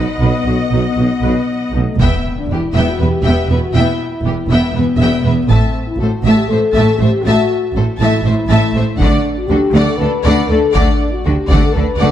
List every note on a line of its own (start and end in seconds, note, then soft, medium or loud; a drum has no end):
0.00 0.20 B4 soft
0.00 1.75 D#5 soft
0.00 1.75 F#5 medium
0.19 0.27 B1 soft
0.19 0.31 B1 soft
0.19 0.30 B2 soft
0.19 1.71 B3 medium
0.19 0.44 B4 soft
0.19 1.70 D#5 soft
0.45 0.53 B1 soft
0.45 0.57 B1 soft
0.45 0.55 B2 soft
0.45 0.55 F#4 soft
0.71 0.79 B1 soft
0.71 0.83 B1 soft
0.71 0.81 B2 soft
0.71 0.80 D#4 soft
0.97 1.05 B1 soft
0.97 1.08 B1 soft
0.97 1.07 B2 soft
0.97 1.05 F#4 soft
1.22 1.30 B1 soft
1.22 1.33 B1 soft
1.22 1.32 B2 soft
1.22 1.47 B4 soft
1.73 1.81 B1 soft
1.73 1.85 B1 soft
1.73 1.84 B2 soft
1.73 1.98 A3 soft
1.73 1.81 D#4 soft
1.98 2.06 E1 soft
1.98 2.09 E2 soft
1.98 2.37 B3 soft
1.98 2.23 B3 soft
1.98 2.23 E5 soft
1.98 2.23 G5 medium
1.98 taiko soft
1.98 impact soft
2.38 2.50 D4 medium
2.50 2.58 E1 soft
2.50 2.60 E2 soft
2.50 2.59 B3 soft
2.50 2.89 E4 soft
2.50 2.60 G4 soft
2.50 2.59 B4 soft
2.75 2.83 E1 medium
2.75 2.85 E2 soft
2.75 2.99 B3 medium
2.75 2.98 E5 soft
2.75 2.98 G5 soft
2.89 3.01 F#4 medium
2.98 3.07 E1 soft
2.98 3.09 E2 soft
2.98 3.09 B3 soft
2.98 3.51 G4 medium
2.98 3.08 B4 soft
2.98 3.06 E5 soft
3.24 3.32 E1 medium
3.24 3.35 E2 medium
3.24 3.49 B3 medium
3.24 3.48 E5 soft
3.24 3.48 G5 soft
3.49 3.57 E1 soft
3.49 3.58 E2 soft
3.49 3.59 B3 soft
3.49 3.76 F#4 medium
3.49 3.59 B4 soft
3.49 3.57 E5 soft
3.74 3.82 E1 soft
3.74 3.82 E2 medium
3.74 4.00 B3 soft
3.74 4.51 E4 medium
3.74 3.98 E5 soft
3.74 3.98 G5 medium
4.23 4.31 E1 soft
4.23 4.34 E2 soft
4.23 4.34 B3 soft
4.23 4.33 G4 soft
4.23 4.33 B4 soft
4.49 4.57 E1 medium
4.49 4.59 E2 medium
4.49 4.74 B3 medium
4.49 4.76 B3 medium
4.49 4.74 E5 soft
4.49 4.75 G5 soft
4.73 4.81 E1 soft
4.73 4.83 B3 soft
4.73 4.83 B4 soft
4.73 4.84 E5 soft
4.78 4.86 E2 soft
4.78 5.25 B3 medium
4.98 5.06 E1 medium
4.98 5.10 E2 medium
4.98 5.24 B3 medium
4.98 5.23 E5 soft
4.98 5.24 G5 medium
5.24 5.32 E1 soft
5.24 5.34 E2 soft
5.24 5.33 B3 soft
5.24 5.50 B3 medium
5.24 5.33 B4 soft
5.24 5.33 E5 soft
5.48 5.56 A1 medium
5.48 5.59 A2 soft
5.48 5.74 A3 soft
5.48 5.88 C4 medium
5.48 5.74 E5 soft
5.48 5.74 A5 medium
5.48 taiko medium
5.87 6.00 E4 medium
5.98 6.06 A1 soft
5.98 6.08 A3 soft
5.98 6.37 F#4 medium
5.98 6.08 A4 soft
6.02 6.10 A2 soft
6.02 6.10 C5 soft
6.23 6.31 A1 medium
6.23 6.49 A3 medium
6.23 6.49 E5 medium
6.27 6.35 A2 medium
6.27 6.50 A5 medium
6.35 6.49 G4 medium
6.47 6.58 A1 soft
6.47 6.59 A2 soft
6.47 6.59 A3 soft
6.47 6.98 A4 medium
6.47 6.59 C5 soft
6.47 6.58 E5 soft
6.74 6.83 A1 medium
6.74 6.85 A2 medium
6.74 6.99 A3 medium
6.74 6.99 E5 medium
6.74 6.98 A5 medium
6.97 7.08 A1 soft
6.97 7.09 A2 soft
6.97 7.09 A3 soft
6.97 7.24 G4 medium
6.97 7.08 C5 soft
7.01 7.09 E5 medium
7.23 7.34 A1 medium
7.23 7.35 A2 medium
7.23 7.49 A3 medium
7.23 7.83 F#4 medium
7.23 7.50 E5 medium
7.23 7.49 A5 medium
7.74 7.82 A1 soft
7.74 7.85 A2 soft
7.74 7.84 A3 soft
7.74 7.84 A4 soft
7.74 7.84 C5 soft
7.99 8.08 A1 medium
7.99 8.09 A2 medium
7.99 8.24 A3 medium
7.99 8.23 E4 medium
7.99 8.25 E5 medium
7.99 8.23 A5 medium
8.24 8.32 A1 soft
8.24 8.35 A2 soft
8.24 8.35 A3 soft
8.24 8.74 E4 medium
8.24 8.34 C5 soft
8.24 8.34 E5 soft
8.48 8.56 A1 medium
8.48 8.59 A2 medium
8.48 8.74 A3 medium
8.48 8.74 E5 medium
8.48 8.74 A5 medium
8.74 8.82 A1 soft
8.74 8.84 A2 soft
8.74 8.83 A3 soft
8.74 8.85 C5 soft
8.74 8.83 E5 medium
8.97 9.06 D2 medium
8.97 9.09 D3 medium
8.97 9.24 A3 medium
8.97 9.34 D4 medium
8.97 9.23 F#5 medium
8.97 taiko medium
9.03 9.25 D5 medium
9.38 9.50 F#4 medium
9.46 9.57 D2 soft
9.46 9.57 A3 soft
9.46 9.86 G4 medium
9.46 9.58 A4 soft
9.51 9.59 D3 soft
9.51 9.59 F#4 soft
9.73 9.81 D2 medium
9.73 9.83 D3 medium
9.73 9.98 A3 medium
9.73 9.99 D5 medium
9.73 9.99 F#5 medium
9.84 9.98 A4 medium
9.96 10.07 D2 soft
9.96 10.07 A3 soft
9.96 10.49 B4 medium
10.00 10.08 D3 soft
10.00 10.09 A4 soft
10.00 10.11 D5 soft
10.24 10.33 D2 medium
10.24 10.34 D3 medium
10.24 10.49 A3 medium
10.24 10.48 D5 medium
10.24 10.50 F#5 medium
10.48 10.57 D2 soft
10.48 10.59 D3 soft
10.48 10.59 A3 soft
10.48 10.74 A4 medium
10.48 10.59 A4 soft
10.48 10.58 D5 medium
10.73 10.83 D2 medium
10.73 10.84 D3 medium
10.73 10.99 A3 medium
10.73 11.12 D4 medium
10.73 10.98 D5 medium
10.73 10.98 F#5 medium
10.73 taiko medium
11.13 11.26 F#4 medium
11.24 11.33 D2 soft
11.24 11.34 D3 soft
11.24 11.34 A3 soft
11.24 11.32 F#4 soft
11.24 11.63 G4 medium
11.24 11.35 A4 soft
11.49 11.57 D2 medium
11.49 11.60 D3 medium
11.49 11.74 A3 medium
11.49 11.73 D5 medium
11.49 11.74 F#5 medium
11.49 taiko medium
11.63 11.75 A4 medium
11.73 11.84 D2 soft
11.73 11.84 D3 soft
11.73 11.84 A3 soft
11.73 11.82 A4 soft
11.73 12.11 B4 medium
11.73 11.85 D5 soft
11.98 12.08 D2 medium
11.98 12.10 D3 medium
11.98 12.11 A3 medium
11.98 12.11 D5 medium
11.98 12.11 F#5 medium